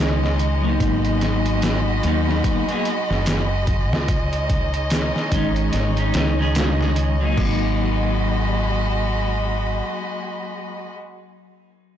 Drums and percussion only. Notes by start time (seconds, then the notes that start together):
0.24 snare
0.39 closed hi-hat
0.80 kick, closed hi-hat
1.05 closed hi-hat
1.21 snare, closed hi-hat
1.46 closed hi-hat
1.62 snare, closed hi-hat, shaker
2.03 closed hi-hat
2.29 snare
2.44 kick, closed hi-hat
2.69 closed hi-hat
2.85 closed hi-hat
3.11 snare
3.26 snare, closed hi-hat, shaker
3.67 kick, closed hi-hat
3.93 snare
4.08 kick, closed hi-hat
4.33 closed hi-hat
4.50 kick, closed hi-hat
4.74 closed hi-hat
4.90 snare, closed hi-hat, shaker
5.16 snare
5.32 kick, closed hi-hat
5.56 closed hi-hat
5.73 snare, closed hi-hat
5.97 closed hi-hat
6.14 snare, closed hi-hat
6.55 snare, closed hi-hat, shaker
6.81 snare
6.96 closed hi-hat
7.37 kick, crash